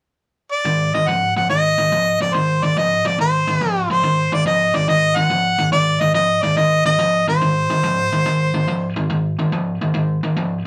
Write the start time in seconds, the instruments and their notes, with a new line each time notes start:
0.52 harmonica D5
0.65 overdriven electric guitar G#2 D#3
0.94 overdriven electric guitar G#2 D#3, harmonica D#5
1.08 overdriven electric guitar G#2 F3, harmonica F#5
1.36 overdriven electric guitar G#2 F3, harmonica F#5
1.50 overdriven electric guitar G#2 D#3, harmonica D#5
1.78 overdriven electric guitar G#2 D#3
1.92 overdriven electric guitar G#2 F3
2.21 overdriven electric guitar G#2 F3, harmonica D5
2.34 overdriven electric guitar G#2 D#3, harmonica C5
2.63 overdriven electric guitar G#2 D#3, harmonica D5
2.77 overdriven electric guitar G#2 F3, harmonica D#5
3.05 overdriven electric guitar G#2 F3, harmonica D5
3.19 overdriven electric guitar G#2 D#3, harmonica C5
3.47 overdriven electric guitar G#2 D#3
3.61 overdriven electric guitar G#2 F3
3.71 harmonica A#4
3.90 overdriven electric guitar G#2 F3, harmonica C5
4.03 overdriven electric guitar G#2 D#3
4.32 overdriven electric guitar G#2 D#3, harmonica D5
4.46 overdriven electric guitar G#2 F3, harmonica D#5
4.74 overdriven electric guitar G#2 D#3, harmonica D5
4.88 overdriven electric guitar G#2 D#3, harmonica D#5
5.16 overdriven electric guitar G#2 D#3, harmonica F#5
5.30 overdriven electric guitar G#2 F3
5.58 overdriven electric guitar G#2 D#3
5.72 overdriven electric guitar G#2 D#3, harmonica D5
6.01 overdriven electric guitar G#2 D#3, harmonica D#5
6.14 overdriven electric guitar G#2 F3, harmonica D#5
6.43 overdriven electric guitar G#2 D#3, harmonica D5
6.57 overdriven electric guitar G#2 D#3, harmonica D#5
6.85 overdriven electric guitar G#2 D#3, harmonica D#5
6.99 overdriven electric guitar G#2 F3
7.28 overdriven electric guitar G#2 D#3, harmonica C5
7.42 overdriven electric guitar G#2 D#3
7.70 overdriven electric guitar G#2 D#3
7.83 overdriven electric guitar G#2 F3
8.13 overdriven electric guitar G#2 D#3
8.26 overdriven electric guitar G#2 D#3
8.54 overdriven electric guitar G#2 D#3
8.68 overdriven electric guitar G#2 F3
8.96 overdriven electric guitar G#2 D#3
9.10 overdriven electric guitar G#2 D#3
9.39 overdriven electric guitar G#2 D#3
9.52 overdriven electric guitar G#2 F3
9.81 overdriven electric guitar G#2 D#3
9.94 overdriven electric guitar G#2 D#3
10.23 overdriven electric guitar G#2 D#3
10.37 overdriven electric guitar G#2 F3